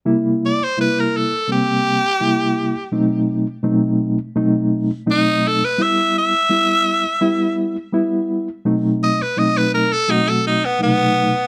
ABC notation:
X:1
M:4/4
L:1/16
Q:1/4=84
K:Clyd
V:1 name="Tenor saxophone"
z2 d c B _B A2 G8 | z12 ^D2 A B | e2 e8 z6 | z2 ^d B d B ^A =A ^D A D B, B,4 |]
V:2 name="Reed electric piano"
[C,G,_B,E]3 z [C,G,B,E]3 z [C,G,B,C]3 z [C,G,B,E]3 z | [B,,F,A,C^D]3 z [B,,F,A,CD]3 z [B,,F,A,CD]3 z [B,,F,A,CD]3 z | [G,B,E]3 z [G,B,E]3 z [G,B,E]3 z [G,B,E]3 z | [B,,F,A,C^D]3 z [B,,F,A,CD]3 z [B,,F,A,CF]3 z [B,,C,F,A,D]3 z |]